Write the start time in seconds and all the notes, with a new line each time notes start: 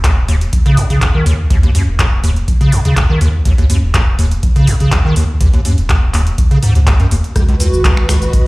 Already playing: D#1
0.04 D#2, kick, clap, closed hi-hat
0.28 D#2, open hi-hat
0.41 closed hi-hat
0.53 A#1, kick, closed hi-hat
0.66 C#3, closed hi-hat
0.77 D#2, kick, open hi-hat
0.90 D#2 C#3, closed hi-hat
1.02 D#1, kick, clap, closed hi-hat
1.15 D#3
1.26 D#2, open hi-hat
1.50 D#2, kick, closed hi-hat
1.63 D#2, closed hi-hat
1.75 D#2 F#2, open hi-hat
1.88 D#1
1.99 D#2, kick, clap, closed hi-hat
2.24 D#2, open hi-hat
2.36 closed hi-hat
2.48 A#1, kick, closed hi-hat
2.61 C#3, closed hi-hat
2.72 D#2, open hi-hat
2.85 D#2 C#3, closed hi-hat
2.97 D#1, kick, clap, closed hi-hat
3.10 D#3
3.21 D#2, open hi-hat
3.45 D#2, kick, closed hi-hat
3.58 D#2, closed hi-hat
3.70 D#2 F#2, open hi-hat
3.83 D#1
3.94 D#2, kick, clap, closed hi-hat
4.19 D#2, open hi-hat
4.31 closed hi-hat
4.43 A#1, kick, closed hi-hat
4.56 C#3, closed hi-hat
4.67 D#2, kick, open hi-hat
4.80 D#2 C#3, closed hi-hat
4.92 D#1, kick, clap, closed hi-hat
5.05 D#3
5.16 D#2, open hi-hat
5.41 D#2, kick, closed hi-hat
5.53 D#2, closed hi-hat
5.65 D#2 F#2, open hi-hat
5.78 D#1, closed hi-hat
5.89 D#2, kick, clap, closed hi-hat
6.14 D#2, clap, open hi-hat
6.27 closed hi-hat
6.38 kick, closed hi-hat
6.51 C#3, closed hi-hat
6.63 D#2 G#2, open hi-hat
6.75 C#2 D#2, closed hi-hat
6.87 D#2, kick, clap, closed hi-hat
7.00 F#2, closed hi-hat
7.11 D#1 D#2, open hi-hat
7.24 closed hi-hat
7.36 C#2 F#4, kick, cross-stick, closed hi-hat, shaker
7.49 C#2, closed hi-hat
7.53 B4
7.60 C#2 E2, open hi-hat, shaker
7.73 G#1, shaker
7.84 C#2, kick, clap, closed hi-hat, shaker
7.97 finger snap
8.09 C#2, finger snap, cross-stick, open hi-hat, shaker
8.22 closed hi-hat, shaker
8.31 G#1 D#5, kick, closed hi-hat, shaker